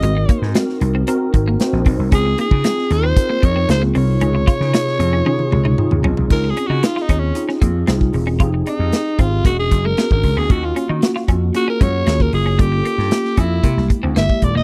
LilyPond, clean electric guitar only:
\new Staff \with { instrumentName = "Clean electric guitar" } { \time 4/4 \key des \major \tempo 4 = 115 aes16 r16 bes16 r16 aes16 r8 c'16 c'16 r8 bes16 r8 c'16 r16 | des'16 r16 bes16 r16 aes16 r8 c'16 r16 bes16 r16 c'16 r16 bes16 c'16 r16 | des'16 r16 f'16 r16 ees'16 r8 des'16 des'16 r8 ees'16 r8 des'16 r16 | r8 des'16 ees'16 r16 f'16 des'16 r8 des'16 bes16 r16 c'16 r8 des'16 |
f'16 r16 ees'16 r8. c'16 r16 bes16 r8 gis16 b16 r8 b16 | r8 des'16 ees'16 r16 f'16 des'16 r8 des'16 aes16 r16 bes16 r8 des'16 | g16 r16 bes16 r8. des'16 r16 bes16 r8 c'16 bes16 r8 bes16 | }